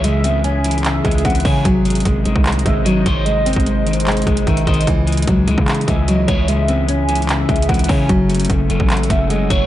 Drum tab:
HH |x-----------x-----------x-----------x---x---x---x-----------x---x---x---x--x--x--x--o-----------|x-----------x--x--x--x--x-----------x-----------x---x---x---x-----------x-----------x-----------|x-----------x---x---x---x-----------x---x---x---x--x--x--x--x-----x-----x-----x-----x---x---x---|x-----------x--x--x--x--x-----------x-----------x---x---x---x-----------x-----------x-----------|
CP |------------------------------------------------x-----------------------------------------------|------------------------------------------------x-----------------------------------------------|------------------------------------------------x-----------------------------------------------|------------------------------------------------x-----------------------------------------------|
BD |------------------------------------------------------------o-----------o-----------o-----------|o-----------------------o-----------------o-----------------o-----------------------o-----------|------------------o-----------------------------------------o-----------o-----------o-----------|o-----------------------o-----------------o-----------------o-----------------------o-----------|

HH |x-----------x-----------x-----------x---x---x---x-----------x---x---x---x--x--x--x--o-----------|x-----------x--x--x--x--x-----------x-----------x---x---x---x-----------x-----------x-----------|
CP |------------------------------------------------x-----------------------------------------------|------------------------------------------------x-----------------------------------------------|
BD |------------------------------------------------------------o-----------o-----------o-----------|o-----------------------o-----------------o-----------------o-----------------------o-----------|